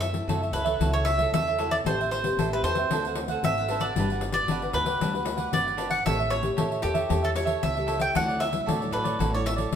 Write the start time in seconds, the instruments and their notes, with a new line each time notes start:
Already playing: upright bass F#2, nylon-string guitar F#3 C#4 E4 A4
0.00 mandolin E5, muted cavaquinho stroke, pandeiro
0.12 nylon-string guitar C#4 E4 A4, pandeiro
0.27 upright bass F#2, nylon-string guitar C#3, cavaquinho F#4 A4 C#5 E5, pandeiro
0.42 cavaquinho A4 C#5 E5, pandeiro
0.52 upright bass C#2, nylon-string guitar C#4 E4 A4, cavaquinho F#4 A4 C#5 E5, mandolin B4, pandeiro
0.64 cavaquinho A4 C#5 E5, pandeiro
0.80 upright bass C#2, nylon-string guitar F#3 C#4 E4 A4, cavaquinho F#4 A4 C#5 E5, pandeiro
0.93 cavaquinho A4 C#5 E5, mandolin C#5, pandeiro
1.05 mandolin E5, muted cavaquinho stroke, pandeiro
1.18 nylon-string guitar C#4 E4 A4, cavaquinho A4 C#5 E5, pandeiro
1.32 upright bass E2, nylon-string guitar C#3, mandolin E5, pandeiro
1.47 cavaquinho A4 C#5 E5, pandeiro
1.58 nylon-string guitar C#4 E4 A4, cavaquinho F#4 A4 C#5 E5, pandeiro
1.71 cavaquinho A4 C#5 E5, mandolin D5, pandeiro
1.85 upright bass A1, nylon-string guitar A3 C4 G4 B4, cavaquinho A4 C5 E5 G5, mandolin C5, pandeiro
2.00 cavaquinho C5 E5 G5, pandeiro
2.11 mandolin C5, muted cavaquinho stroke, pandeiro
2.23 nylon-string guitar C4 G4 B4, pandeiro
2.37 upright bass A1, nylon-string guitar E3, cavaquinho A4 C5 E5 G5, pandeiro
2.52 nylon-string guitar C4 G4 B4, mandolin B4, cavaquinho C5 E5 G5, pandeiro
2.63 upright bass E2, cavaquinho A4 C5 E5 G5, mandolin C5, pandeiro
2.74 nylon-string guitar C4 F#4 B4, cavaquinho E5 G5, pandeiro
2.79 cavaquinho C5
2.89 upright bass D2, nylon-string guitar D3, cavaquinho D4 A4, pandeiro
2.93 cavaquinho C5 F#5
3.03 nylon-string guitar C4 F#4, cavaquinho F#5, pandeiro
3.08 cavaquinho A4 C5
3.15 muted cavaquinho stroke, pandeiro
3.28 cavaquinho A4 C5 F#5, pandeiro
3.42 upright bass G#1, nylon-string guitar C4 F#4 B4, mandolin E5, pandeiro
3.58 cavaquinho A4 C5 F#5, pandeiro
3.68 nylon-string guitar C4 F#4 B4, cavaquinho D4 A4 C5 F#5, pandeiro
3.80 cavaquinho A4 C5 F#5, mandolin D5, pandeiro
3.96 upright bass G1, nylon-string guitar G3 D4 F#4 B4, cavaquinho D4 G4, pandeiro
4.00 cavaquinho B4 F#5
4.10 cavaquinho G4 B4 F#5, pandeiro
4.21 muted cavaquinho stroke, pandeiro
4.32 nylon-string guitar D4 F#4 B4, mandolin D5, pandeiro
4.47 upright bass G1, nylon-string guitar D3, cavaquinho D4 G4 B4 F#5, pandeiro
4.61 nylon-string guitar D4 F#4 B4, cavaquinho G4 B4 F#5, pandeiro
4.73 upright bass D2, cavaquinho D4 G4 B4 F#5, mandolin B4, pandeiro
4.84 nylon-string guitar D4 F#4 B4, cavaquinho B4 F#5, pandeiro
4.89 cavaquinho G4
5.00 upright bass D2, nylon-string guitar G3, cavaquinho D4 G4 B4 F#5, pandeiro
5.14 nylon-string guitar D4 F#4 B4, cavaquinho G4 B4 F#5, pandeiro
5.25 muted cavaquinho stroke, pandeiro
5.37 cavaquinho G4 B4 F#5, pandeiro
5.52 upright bass G1, nylon-string guitar D3 D4 F#4 B4, mandolin D5, pandeiro
5.66 cavaquinho G4 B4 F#5, pandeiro
5.77 cavaquinho D4 G4 B4 F#5, nylon-string guitar D4 F#4 B4, pandeiro
5.90 cavaquinho G4 B4 F#5, mandolin F#5, pandeiro
6.06 upright bass A1, nylon-string guitar A3 C#4 G4 A#4, cavaquinho G4 A4 C#5 E5, mandolin E5, pandeiro
6.19 cavaquinho A4 C#5 E5, pandeiro
6.30 mandolin C#5, pandeiro
6.43 nylon-string guitar C#4 G4 A#4, pandeiro
6.57 upright bass A1, nylon-string guitar E3, cavaquinho G4 A4 C#5 E5, pandeiro
6.71 cavaquinho A4 C#5 E5, pandeiro
6.82 upright bass E2, nylon-string guitar C#4 G4 A#4, cavaquinho G4 A4 C#5 E5, mandolin G4, pandeiro
6.94 cavaquinho A4 C#5 E5, pandeiro
7.09 upright bass E2, nylon-string guitar A3 C#4 G4 A#4, cavaquinho G4 A4 C#5 E5, pandeiro
7.22 mandolin A4, cavaquinho A4 C#5 E5, pandeiro
7.35 nylon-string guitar C#4 G4 A#4, mandolin C#5, muted cavaquinho stroke, pandeiro
7.45 cavaquinho A4 C#5 E5, pandeiro
7.63 upright bass C#2, nylon-string guitar E3, mandolin E5, pandeiro
7.75 nylon-string guitar C#4 G4 A#4, cavaquinho A4 C#5 E5, pandeiro
7.87 cavaquinho G4 A4 C#5 E5, pandeiro
7.99 cavaquinho A4 C#5 E5, mandolin G5, pandeiro
8.15 upright bass D2, nylon-string guitar D3 F#3 C#4 E4, cavaquinho F#4 A4 C#5 D5, mandolin F#5, pandeiro
8.28 cavaquinho A4 C#5 D5, pandeiro
8.39 mandolin E5, muted cavaquinho stroke, pandeiro
8.52 nylon-string guitar F#3 C#4 E4, pandeiro
8.66 upright bass D2, nylon-string guitar A2, cavaquinho F#4 A4 C#5 D5, pandeiro
8.80 nylon-string guitar F#3 C#4 E4, cavaquinho A4 C#5 D5, pandeiro
8.91 upright bass A1, cavaquinho F#4 A4 C#5 D5, mandolin B4, pandeiro
9.04 cavaquinho A4 C#5 D5, pandeiro
9.19 upright bass A1, nylon-string guitar D3, cavaquinho F#4 A4 C#5 D5, pandeiro
9.34 nylon-string guitar F#3 C#4 E4, cavaquinho A4 C#5 D5, mandolin C#5, pandeiro
9.45 mandolin E5, muted cavaquinho stroke, pandeiro
9.56 cavaquinho A4 C#5 D5, pandeiro
9.71 upright bass D2